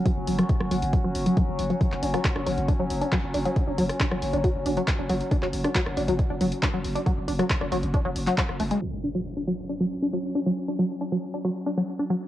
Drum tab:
CC |----------------|----------------|----------------|----------------|
HH |x-oxx-oxx-oxx-ox|x-oxx-oxx-oxx-ox|x-oxx-oxx-oxx-ox|x-oxx-oxx-oxx-ox|
CP |----------------|-x--x-------x---|----x-------x---|-x--x-------x---|
SD |---r-r----------|---r-r----------|---r-r----------|---r-r----------|
BD |o---o---o---o---|o---o---o---o---|o---o---o---o---|o---o---o---o---|

CC |----------------|x---------------|----------------|
HH |x-oxx-oxx-oxx-ox|----------------|----------------|
CP |----x------xx---|----------------|----------------|
SD |---r-r-------r--|----------------|----------------|
BD |o---o---o---o---|----------------|----------------|